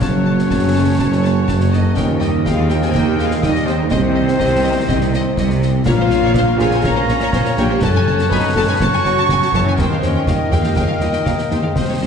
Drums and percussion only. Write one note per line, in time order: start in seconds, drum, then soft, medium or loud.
0.02 concert bass drum medium
0.02 snare medium
0.39 snare soft
0.50 concert bass drum medium
0.50 snare medium
0.99 concert bass drum medium
0.99 snare medium
1.12 snare soft
1.25 snare soft
1.48 concert bass drum medium
1.48 snare medium
1.61 snare soft
1.73 snare soft
1.97 concert bass drum medium
1.97 snare medium
2.21 snare soft
2.46 concert bass drum medium
2.46 snare medium
2.70 snare medium
2.82 snare medium
2.95 concert bass drum medium
2.95 snare medium
3.19 snare soft
3.31 snare medium
3.43 concert bass drum medium
3.43 snare medium
3.55 snare soft
3.67 snare soft
3.91 concert bass drum medium
3.91 snare medium
4.28 snare medium
4.40 concert bass drum medium
4.40 snare medium
4.89 concert bass drum medium
4.89 snare medium
5.01 snare medium
5.14 snare medium
5.37 concert bass drum medium
5.37 snare medium
5.50 snare soft
5.62 snare soft
5.86 concert bass drum medium
5.86 snare medium
5.86 crash soft
6.11 snare medium
6.34 concert bass drum medium
6.34 snare medium
6.59 snare medium
6.71 snare soft
6.84 concert bass drum medium
6.84 snare medium
7.08 snare soft
7.20 snare medium
7.33 concert bass drum medium
7.33 snare medium
7.45 snare soft
7.57 snare medium
7.82 concert bass drum medium
7.82 snare medium
8.19 snare medium
8.31 concert bass drum medium
8.31 snare medium
8.80 concert bass drum medium
8.80 snare medium
8.93 snare soft
9.05 snare soft
9.29 concert bass drum medium
9.29 snare medium
9.42 snare medium
9.54 snare soft
9.79 concert bass drum medium
9.79 snare medium
10.02 snare medium
10.27 concert bass drum medium
10.27 snare medium
10.52 snare medium
10.64 snare medium
10.76 concert bass drum medium
10.76 snare medium
11.01 snare medium
11.13 snare soft
11.26 concert bass drum medium
11.26 snare medium
11.38 snare soft
11.51 snare soft
11.76 concert bass drum medium
11.76 snare medium